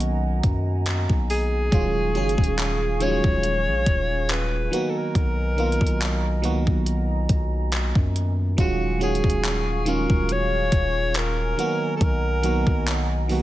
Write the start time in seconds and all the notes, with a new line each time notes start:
Already playing: B1 D#3 F#3 A#3 B3 C#4 F#4 D#5 F#5 G#5 A#5
0.00 closed hi-hat
0.43 F#2, kick, closed hi-hat
0.86 clap, closed hi-hat
1.10 B1, kick
1.30 G#4, open hi-hat
1.71 D#1 D#3 F#3 G#3 C#4 F4 G#4 F5 C#6, kick, closed hi-hat
2.14 F#1 D#3 F#3 G#3 C#4 G#4, closed hi-hat
2.29 closed hi-hat
2.38 D#1, kick
2.44 closed hi-hat
2.59 clap, closed hi-hat
3.00 D#3 F3 G#3 C#4 F4 C#5, closed hi-hat
3.07 F#3
3.24 D#1, kick
3.43 closed hi-hat
3.67 A#1
3.86 D#1, kick, closed hi-hat
4.29 B4, clap, closed hi-hat
4.71 D#3 F#3 A#3 B3 F#4 D#5 A#5, closed hi-hat
4.90 A4
4.97 A#4
5.15 B1, kick, closed hi-hat
5.57 D#3 F#3 A#3 B3 F4, closed hi-hat
5.72 closed hi-hat
5.81 B1, kick
5.87 closed hi-hat
6.01 clap, closed hi-hat
6.42 C#2 D#3 F#3 A#3 B3 F#4, closed hi-hat
6.67 B1, kick
6.86 closed hi-hat
7.29 B1, kick, closed hi-hat
7.72 clap, closed hi-hat
7.95 F#2, kick
8.16 closed hi-hat
8.57 D#1 D#3 F#3 G#3 C#4 F4 F#4 G#4 F5 G#5 C#6, kick, closed hi-hat
8.99 D#3 F#3 G#3 C#4 F#4, closed hi-hat
9.03 G#4
9.15 closed hi-hat
9.24 D#1, kick
9.30 closed hi-hat
9.44 clap, closed hi-hat
9.85 D#3 F#3 G#3 C#4 F4 A#4, closed hi-hat
10.10 D#1, kick
10.29 C#5, closed hi-hat
10.72 D#1, kick, closed hi-hat
11.14 A#4, clap, closed hi-hat
11.57 D#3 F#3 A#3 B3 F#4 D#5 F#5 A#5, closed hi-hat
11.96 A4
12.01 B1 A#4, kick, closed hi-hat
12.42 D#3 F#3 A#3 B3 F#4, closed hi-hat
12.67 B1, kick
12.87 clap, closed hi-hat
13.28 D#3 F#3 A#3 B3 F#4 G#4, open hi-hat